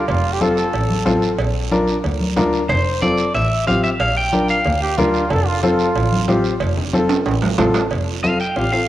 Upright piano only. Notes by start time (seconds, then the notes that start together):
0.41 C4 F4 A4
1.05 C4 F4 A4
1.71 D4 F4 A#4
2.36 D4 F4 A#4
3.02 C4 F4 A4
3.67 C4 F4 G4
4.32 D4 F4 A#4
4.98 D4 F4 A#4
5.63 C4 F4 A4
6.28 C4 F4 G4
6.93 C4 F4 A4
7.58 C4 F4 A4
8.23 C4 F4 A4
8.56 C4 F4 G4
8.72 C4 F4 A4